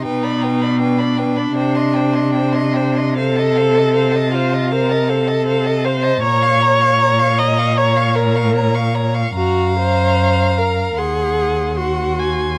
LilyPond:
<<
  \new Staff \with { instrumentName = "Violin" } { \time 4/4 \key c \dorian \tempo 4 = 77 g''16 b''16 g''16 b''16 g''16 b''16 g''16 b''16 g''16 c'''16 g''16 c'''16 g''16 c'''16 g''16 c'''16 | \key bes \minor f''16 a''16 f''16 a''16 f''16 a''16 f''16 a''16 f''16 a''16 f''16 a''16 f''16 a''16 f''16 a''16 | bes''16 des'''16 bes''16 des'''16 bes''16 des'''16 bes''16 des'''16 bes''16 des'''16 bes''16 des'''16 bes''16 des'''16 bes''16 des'''16 | bes''2 c'''4 c'''4 | }
  \new Staff \with { instrumentName = "Violin" } { \time 4/4 \key c \dorian b'16 d''16 b'16 d''16 b'16 d''16 b'16 d''16 c''16 ees''16 c''16 ees''16 c''16 ees''16 c''16 ees''16 | \key bes \minor c''16 ees''16 c''16 ees''16 c''16 ees''16 c''16 ees''16 c''16 ees''16 c''16 ees''16 c''16 ees''16 c''16 ees''16 | des''16 f''16 des''16 f''16 des''16 f''16 des''16 f''16 des''16 f''16 des''16 f''16 des''16 f''16 des''16 f''16 | f''2 ges''4 ges''8 aes''8 | }
  \new Staff \with { instrumentName = "Viola" } { \time 4/4 \key c \dorian ees'4 d'2. | \key bes \minor a'4. f'8 bes'8 a'4 c''8 | des''4. ees''8 des''8 bes'4 r8 | ges'8 c''4 bes'8 aes'4 ges'4 | }
  \new Staff \with { instrumentName = "Cello" } { \clef bass \time 4/4 \key c \dorian b,2 c2~ | \key bes \minor c1 | bes,1 | ges,2 ees,2 | }
>>